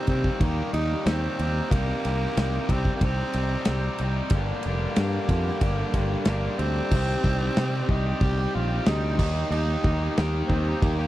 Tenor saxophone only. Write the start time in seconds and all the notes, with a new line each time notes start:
0.09 C4
0.43 A#3
0.73 D#4
1.06 C4
1.71 A#3
2.71 C4
2.96 A#3
3.04 C4
4.34 A#3
6.27 A#3
6.58 C4
7.90 D#4
8.22 G4
8.54 F4
8.87 D#4
9.51 D#4
10.48 C4
10.82 A#3